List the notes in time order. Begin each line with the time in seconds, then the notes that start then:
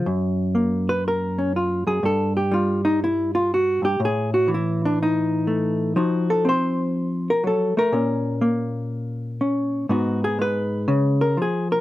0.06 F#2
0.55 A#3
0.89 B4
1.08 A#4
1.38 C#4
1.56 F4
1.87 F#2 G#4
2.03 G2 A4
2.37 G4
2.51 G3 F4
2.85 D#4
3.04 E4
3.35 F4
3.54 F#4
3.82 G2 G4
4.00 A2
4.05 G#4
4.34 F#4
4.48 E3
4.54 E4
4.85 D4
5.03 D#4
5.47 A3
5.96 F3 D#4 F#4
6.30 A4
6.45 C4 C5
7.30 A#4
7.44 F#3 A4
7.77 A3 A#4
7.92 A#2 C#4
8.41 A#3
9.41 C#4
9.89 G#2 B3 D#4 F#4
10.24 G#4
10.39 G#3 B4
10.88 C#3
11.21 A#4
11.37 F3
11.42 G#4
11.72 A#4